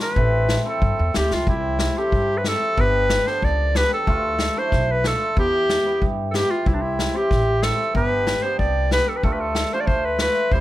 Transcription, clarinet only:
0.02 0.63 B4 medium
0.68 1.12 A4 medium
1.17 1.35 G4 medium
1.34 1.49 F4 medium
1.49 2.00 E4 medium
1.98 2.39 G4 loud
2.37 2.49 B4 medium
2.48 2.82 A4 loud
2.80 3.29 B4 loud
3.28 3.46 C5 loud
3.44 3.78 D5 medium
3.77 3.92 B4 loud
3.93 4.60 A4 loud
4.58 4.93 C5 medium
4.92 5.08 B4 medium
5.07 5.38 A4 loud
5.39 6.03 G4 loud
6.31 6.53 G4 medium
6.31 6.36 A4 medium
6.51 6.69 F4 medium
6.67 6.76 E4 medium
6.74 6.83 D4 medium
6.82 7.18 E4 medium
7.17 7.64 G4 loud
7.63 7.95 A4 medium
7.96 8.44 B4 medium
8.43 8.58 C5 medium
8.59 8.89 D5 medium
8.93 9.10 B4 loud
9.08 9.18 A4 medium
9.16 9.25 B4 medium
9.23 9.33 A4 medium
9.32 9.42 B4 medium
9.40 9.75 A4 medium
9.73 9.82 C5 medium
9.80 9.88 D5 medium
9.87 10.07 C5 medium
10.05 10.21 B4 medium
10.21 10.55 B4 loud
10.53 10.61 C5 medium

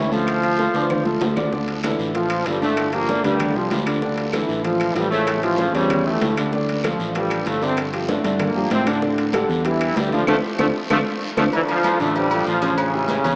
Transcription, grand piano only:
0.12 0.37 A3 medium
0.12 0.38 A4 medium
0.12 0.38 A5 medium
0.43 0.56 F3 medium
0.43 0.56 F4 medium
0.43 0.56 F5 medium
0.59 0.72 A3 medium
0.59 0.72 A4 medium
0.59 0.72 A5 medium
0.75 1.00 D4 medium
0.75 1.00 D5 medium
0.75 1.01 D6 medium
1.06 1.31 A3 medium
1.06 1.32 A4 medium
1.06 1.32 A5 medium
1.37 1.50 D3 medium
1.37 1.50 D4 medium
1.37 1.50 D5 medium
1.53 1.78 D3 medium
1.53 1.78 D4 medium
1.53 1.79 D5 medium
1.84 2.09 D3 medium
1.84 2.09 D4 medium
1.84 2.10 A4 medium
2.15 2.41 F3 medium
2.15 2.41 F4 medium
2.15 2.41 A4 medium
2.47 2.59 F3 medium
2.47 2.59 F4 medium
2.47 2.59 A4 medium
2.62 2.87 D3 medium
2.62 2.88 D4 medium
2.62 2.88 D5 medium
2.94 3.06 F3 medium
2.94 3.06 F4 medium
2.94 3.06 G4 medium
3.09 3.21 D3 medium
3.09 3.21 D4 medium
3.09 3.22 D5 medium
3.25 3.50 D3 medium
3.25 3.51 D4 medium
3.25 3.51 D5 medium
3.56 3.81 F3 medium
3.56 3.81 F4 medium
3.56 3.82 G4 medium
3.87 4.00 D3 medium
3.87 4.00 D4 medium
3.87 4.00 D5 medium
4.02 4.28 D3 medium
4.02 4.28 D4 medium
4.02 4.28 D5 medium
4.33 4.59 D3 medium
4.33 4.59 D4 medium
4.33 4.59 A4 medium
4.65 4.90 F3 medium
4.65 4.90 F4 medium
4.65 4.91 A4 medium
4.96 5.09 F3 medium
4.96 5.09 F4 medium
4.96 5.09 A4 medium
5.12 5.37 C#3 medium
5.12 5.38 C#4 medium
5.12 5.38 C#5 medium
5.43 5.56 E3 medium
5.43 5.56 E4 medium
5.43 5.56 G4 medium
5.59 5.72 C#3 medium
5.59 5.72 C#4 medium
5.59 5.72 C#5 medium
5.75 6.00 C#3 medium
5.75 6.01 C#4 medium
5.75 6.01 C#5 medium
6.07 6.32 E3 medium
6.07 6.32 E4 medium
6.07 6.32 G4 medium
6.38 6.50 D3 medium
6.38 6.50 D4 medium
6.38 6.51 D5 medium
6.54 6.79 D3 medium
6.54 6.79 D4 medium
6.54 6.79 D5 medium
6.84 7.09 F3 medium
6.84 7.10 F4 medium
6.84 7.10 A4 medium
7.15 7.41 F3 medium
7.15 7.41 F4 medium
7.15 7.41 A4 medium
7.47 7.59 F3 medium
7.47 7.60 F4 medium
7.47 7.60 A4 medium
7.62 7.88 D3 medium
7.62 7.88 D4 medium
7.62 7.88 D5 medium
7.93 8.06 F3 medium
7.93 8.06 F4 medium
7.93 8.06 G4 medium
8.09 8.22 D3 medium
8.09 8.22 D4 medium
8.09 8.22 D5 medium
8.24 8.50 D3 medium
8.24 8.50 D4 medium
8.24 8.50 D5 medium
8.55 8.81 F3 medium
8.55 8.81 F4 medium
8.55 8.82 G4 medium
8.87 9.00 D3 medium
8.87 9.00 D4 medium
8.87 9.00 D5 medium
9.02 9.28 D3 medium
9.02 9.28 D4 medium
9.02 9.28 D5 medium
9.34 9.59 G3 medium
9.34 9.60 G4 medium
9.34 9.60 A4 medium
9.65 9.91 G3 medium
9.65 9.91 G4 medium
9.65 9.91 A4 medium
9.97 10.09 G3 medium
9.97 10.10 G4 medium
9.97 10.10 A4 medium
10.12 10.25 D3 medium
10.12 10.25 D4 medium
10.12 10.25 D5 medium
10.28 10.38 C4 medium
10.28 10.38 D4 loud
10.28 10.38 F4 loud
10.59 10.69 C4 medium
10.59 10.69 D4 medium
10.59 10.69 F4 medium
10.91 11.01 C4 medium
10.91 11.01 D4 loud
10.91 11.01 F4 medium
11.37 11.47 C4 medium
11.37 11.48 D4 loud
11.37 11.47 F4 medium
11.53 11.79 D3 medium
11.53 11.79 D4 medium
11.53 11.79 D5 medium
11.84 11.97 F3 medium
11.84 11.97 F4 medium
11.84 11.98 A4 medium
12.00 12.26 D3 loud
12.00 12.26 D4 medium
12.00 12.26 D5 medium
12.31 12.57 F3 medium
12.31 12.57 F4 medium
12.31 12.57 A4 medium
12.62 12.88 C#3 medium
12.62 12.88 C#4 medium
12.62 12.88 C#5 medium
12.94 13.19 E3 medium
12.94 13.19 E4 medium
12.94 13.19 G4 medium
13.24 13.36 C#3 medium
13.24 13.36 C#4 medium
13.24 13.36 C#5 medium

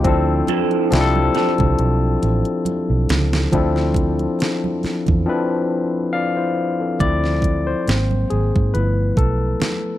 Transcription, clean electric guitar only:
0.49 0.89 F3 medium
0.49 0.89 C4 medium
0.49 0.89 E4 loud
0.49 0.89 A4 loud
1.35 1.52 F3 medium
1.35 1.52 C4 medium
1.35 1.52 E4 medium
1.35 1.52 A4 medium

